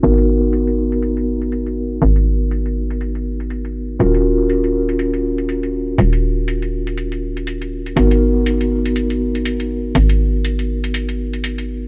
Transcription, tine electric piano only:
X:1
M:4/4
L:1/8
Q:"Swing 16ths" 1/4=121
K:G#m
V:1 name="Tine electric piano"
[B,DFA]8- | [B,DFA]8 | [C^EFA]8- | [C^EFA]8 |
[B,DFA]8- | [B,DFA]8 |]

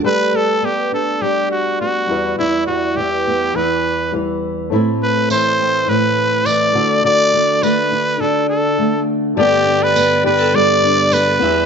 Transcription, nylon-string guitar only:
X:1
M:4/4
L:1/16
Q:1/4=103
K:G
V:1 name="Nylon-string guitar"
[G,A]2 B,2 B,2 D2 G,4 B,2 E,,2 | [E,,E]2 G,2 E,2 B,2 E,,4 E,4 | [A,,E]4 E,2 C2 A,,4 E,2 D,2 | [D,F]2 A,2 A,2 D2 D,4 A,4 |
G,2 D2 B,2 G A G,2 D2 B,2 E,,2 |]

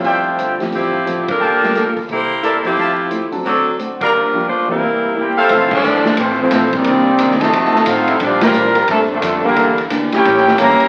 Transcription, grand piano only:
X:1
M:4/4
L:1/8
Q:"Swing" 1/4=176
K:F
V:1 name="Grand piano"
[F,CGe]2 z [F,CEG]3 [F,CEA] z | z [G,B,FA] z4 z [F,CEc]- | [F,CEc]2 z [_G,CDA]3 z2 | z [F,B,DG] z [E,B,CG] z4 |
z8 | z8 | z8 | z8 |]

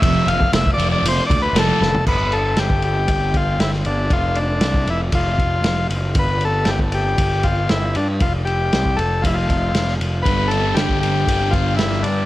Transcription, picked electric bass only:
X:1
M:4/4
L:1/8
Q:1/4=117
K:Gmix
V:1 name="Picked electric bass" clef=bass
F,,, F,,, F,,, F,,, F,,, D,, F,,, F,,, | G,,,2 G,,,2 G,,,2 G,,, G,,, | F,,,2 C,, F,,, F,,, F,,, F,,, ^F,,, | G,,,2 G,,,2 G,,,2 G,,, G,, |
F,,,2 C,, F,,, F,,, F,,, F,,, F,,, | G,,,2 G,,,2 G,,,2 G,,, G,, |]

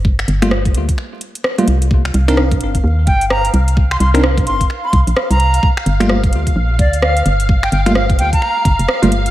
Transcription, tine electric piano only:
X:1
M:4/4
L:1/16
Q:"Swing 16ths" 1/4=129
K:Cm
V:1 name="Tine electric piano"
z3 [G,=A,B,F] z8 z [G,A,B,F] z2 | z3 [CDEB] z12 | z3 [CDEB] z12 | z3 [G,=A,B,F] z12 |
z3 [G,=A,B,F] z8 z [G,A,B,F] z2 |]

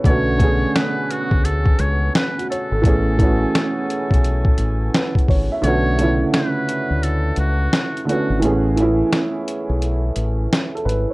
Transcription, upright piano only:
X:1
M:4/4
L:1/16
Q:"Swing 16ths" 1/4=86
K:Bdor
V:1 name="Upright piano"
c z12 F c A- | A z8 z3 B2 c e- | e z12 z3 | z12 z A B c |]
V:2 name="Upright piano"
[D,A,B,CF]2 [D,A,B,CG]6 z8 | [E,A,B,CG]2 [E,A,B,CF]6 z8 | [D,A,B,CF]2 [C,D,A,B,CE]6 z6 [D,A,B,CF]2 | [E,A,B,CG]2 [E,A,B,CE]6 z8 |]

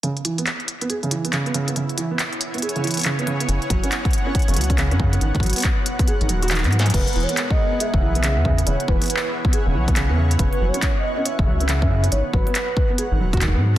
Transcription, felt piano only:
X:1
M:4/4
L:1/16
Q:"Swing 16ths" 1/4=139
K:Elyd
V:1 name="Felt piano" clef=bass
C, z E, B, z3 B, G C, E, B, C, B, C, B, | C, z E, B, z3 B, G C, E, B, C, B, C, B, | C, z F, C z3 C c C, F, C C, C C, C | D, z F, B, z3 B, G D, F, F D, B, F, F, |
C, z E, B, z3 B, G C, E, B, C, B, C, B, | C, z E, B, z3 B, G C, E, B, C, B, C, B, | C, z F, C z3 C c C, F, C C, C C, C | D, z F, B, z3 B, G D, F, F D, B, F, z |]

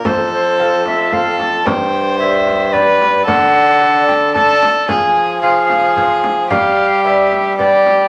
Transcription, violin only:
X:1
M:3/4
L:1/8
Q:1/4=111
K:Flyd
V:1 name="Violin"
A4 A2 | c4 B2 | A4 A2 | _A2 A4 |
G4 G2 |]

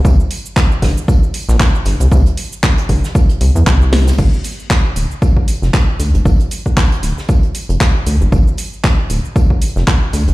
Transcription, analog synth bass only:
X:1
M:4/4
L:1/16
Q:"Swing 16ths" 1/4=116
K:Gdor
V:1 name="Analog synth bass" clef=bass
C,, z4 z G,,, z4 B,,, z2 G,,, C,, | C,, z4 z G,,, z3 C,, E,, C,,3 z | G,,, z4 z D,,, z4 F,,, z2 D,, G,,, | G,,, z4 z D,,, z4 F,,, z2 D,, G,,, |
G,,, z4 z D,,, z4 F,,, z2 D,, G,,, |]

